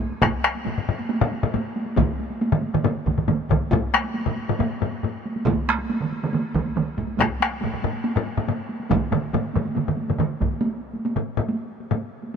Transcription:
0.10 taiko high
0.21 taiko rim, taiko, taiko high
0.44 taiko rim, taiko high
0.55 taiko high
0.66 taiko low-mid, taiko high
0.78 taiko low-mid
0.89 taiko low-mid
0.99 taiko high
1.09 taiko high
1.21 taiko low-mid
1.32 taiko high
1.43 taiko low-mid, taiko high
1.54 taiko low-mid, taiko high
1.76 taiko high
1.86 taiko high
1.96 taiko, taiko low-mid, taiko mid, taiko high
2.19 taiko high
2.30 taiko high
2.41 taiko high
2.52 taiko low-mid, taiko mid
2.62 taiko high
2.74 taiko low-mid, taiko mid, taiko high
2.84 taiko low-mid, taiko mid, taiko high
3.06 taiko, taiko low-mid, taiko mid, taiko high
3.18 taiko low-mid, taiko mid, taiko high
3.28 taiko low-mid, taiko mid, taiko high
3.50 taiko, taiko low-mid, taiko mid, taiko high
3.61 taiko high
3.71 taiko, taiko low-mid, taiko high
3.93 taiko rim, taiko high
4.04 taiko high
4.14 taiko high
4.26 taiko low-mid
4.36 taiko high
4.48 taiko low-mid, taiko high
4.59 taiko low-mid, taiko high
4.81 taiko low-mid, taiko high
4.92 taiko high
5.03 taiko low-mid, taiko high
5.26 taiko high
5.36 taiko high
5.46 taiko, taiko mid, taiko high
5.68 taiko rim, taiko high
5.79 taiko high
5.90 taiko high
6.01 taiko mid
6.12 taiko high
6.23 taiko mid, taiko high
6.33 taiko mid, taiko high
6.55 taiko, taiko mid, taiko high
6.66 taiko high
6.76 taiko mid, taiko high
6.97 taiko, taiko high
7.07 taiko high
7.18 taiko rim, taiko, taiko high
7.40 taiko rim, taiko high
7.51 taiko high
7.61 taiko low-mid, taiko high
7.74 taiko low-mid
7.82 taiko low-mid, taiko high
7.93 taiko high
8.04 taiko high
8.17 taiko low-mid
8.26 taiko high
8.37 taiko low-mid, taiko high
8.48 taiko low-mid, taiko high
8.69 taiko high
8.80 taiko high
8.90 taiko, taiko low-mid, taiko mid, taiko high
9.11 taiko low-mid, taiko mid, taiko high
9.22 taiko high
9.33 taiko low-mid, taiko mid, taiko high
9.54 taiko low-mid, taiko mid, taiko high
9.64 taiko high
9.75 taiko low-mid, taiko mid, taiko high
9.88 taiko low-mid, taiko mid
9.97 taiko high
10.08 taiko low-mid, taiko mid, taiko high
10.19 taiko low-mid, taiko mid, taiko high
10.40 taiko, taiko low-mid, taiko mid, taiko high
10.51 taiko high
10.61 taiko high
10.94 taiko high
11.05 taiko high
11.17 taiko low-mid
11.37 taiko low-mid, taiko high
11.49 taiko high
11.80 taiko high
11.91 taiko low-mid, taiko high
12.23 taiko high

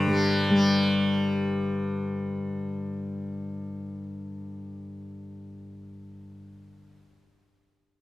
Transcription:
Already playing: G2 D3 G3 G4 C5
0.07 G3
0.50 G3

